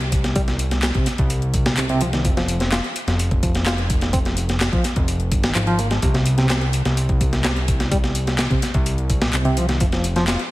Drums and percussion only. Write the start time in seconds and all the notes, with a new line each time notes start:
0.01 closed hi-hat
0.12 kick, closed hi-hat
0.24 snare, closed hi-hat
0.36 kick, closed hi-hat
0.48 snare, closed hi-hat
0.59 closed hi-hat
0.71 snare, closed hi-hat
0.83 snare, clap, closed hi-hat
0.94 kick, closed hi-hat
1.06 snare, closed hi-hat
1.18 kick, closed hi-hat
1.30 closed hi-hat
1.42 closed hi-hat
1.54 kick, closed hi-hat
1.66 snare, closed hi-hat
1.77 clap, closed hi-hat
1.89 closed hi-hat
2.01 closed hi-hat
2.13 snare, closed hi-hat
2.25 kick, closed hi-hat
2.37 snare, closed hi-hat
2.48 closed hi-hat
2.60 snare, closed hi-hat
2.72 snare, clap, closed hi-hat
2.84 closed hi-hat
2.96 closed hi-hat
3.08 snare, closed hi-hat
3.19 closed hi-hat
3.31 kick, closed hi-hat
3.43 kick, closed hi-hat
3.55 snare, closed hi-hat
3.66 snare, clap, closed hi-hat
3.78 closed hi-hat
3.90 kick, closed hi-hat
4.01 snare, closed hi-hat
4.13 kick, closed hi-hat
4.25 snare, closed hi-hat
4.37 closed hi-hat
4.49 snare, closed hi-hat
4.61 snare, clap, closed hi-hat
4.73 kick, closed hi-hat
4.84 snare, closed hi-hat
4.96 kick, closed hi-hat
5.08 closed hi-hat
5.20 closed hi-hat
5.32 kick, closed hi-hat
5.43 snare, closed hi-hat
5.55 clap, closed hi-hat
5.67 closed hi-hat
5.79 closed hi-hat
5.91 snare, closed hi-hat
6.02 kick, closed hi-hat
6.14 snare, closed hi-hat
6.26 closed hi-hat
6.38 snare, closed hi-hat
6.50 snare, clap, closed hi-hat
6.61 closed hi-hat
6.73 closed hi-hat
6.85 snare, closed hi-hat
6.97 closed hi-hat
7.09 kick, closed hi-hat
7.21 kick, closed hi-hat
7.33 snare, closed hi-hat
7.45 snare, clap, closed hi-hat
7.56 closed hi-hat
7.68 kick, closed hi-hat
7.80 snare, closed hi-hat
7.91 kick, closed hi-hat
8.04 snare, closed hi-hat
8.15 closed hi-hat
8.27 snare, closed hi-hat
8.39 snare, clap, closed hi-hat
8.51 kick, closed hi-hat
8.62 snare, closed hi-hat
8.74 kick, closed hi-hat
8.86 closed hi-hat
8.98 closed hi-hat
9.10 kick, closed hi-hat
9.22 snare, closed hi-hat
9.33 clap, closed hi-hat
9.45 closed hi-hat
9.57 closed hi-hat
9.69 snare, closed hi-hat
9.80 kick, closed hi-hat
9.92 snare, closed hi-hat
10.04 closed hi-hat
10.16 snare, closed hi-hat
10.28 snare, clap, closed hi-hat
10.39 closed hi-hat